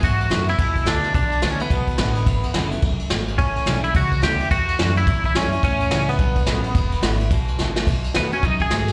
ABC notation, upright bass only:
X:1
M:4/4
L:1/8
Q:"Swing" 1/4=214
K:Emix
V:1 name="Upright bass" clef=bass
G,,2 F,,2 E,,2 D,,2 | B,,,2 D,,2 B,,, z A,,,2 | G,,, z F,,,2 E,,, z G,,,2 | A,,, z B,,,2 C,,2 D,,2 |
E,,2 F,,2 =G,,2 F,,2 | E,,2 C,,2 B,,,2 A,,,2 | E,,,2 G,,,2 B,,,2 G,,,2 | B,,,2 E,,2 F,,2 G,,2 |]